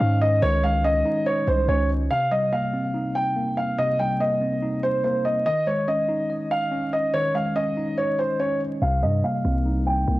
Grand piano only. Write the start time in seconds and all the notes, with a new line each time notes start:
Already playing: F5
0.22 D#5
0.42 C#5
0.64 F5
0.84 D#5
1.26 C#5
1.48 C5
1.69 C#5
2.11 F5
2.31 D#5
2.53 F5
3.15 G5
3.57 F5
3.78 D#5
3.99 G5
4.20 D#5
4.83 C5
5.04 C5
5.25 D#5
5.46 D#5
5.67 C#5
5.88 D#5
6.51 F5
6.93 D#5
7.14 C#5
7.35 F5
7.56 D#5
7.98 C#5
8.19 C5
8.40 C#5
8.82 F5
9.03 D#5
9.24 F5
9.87 G5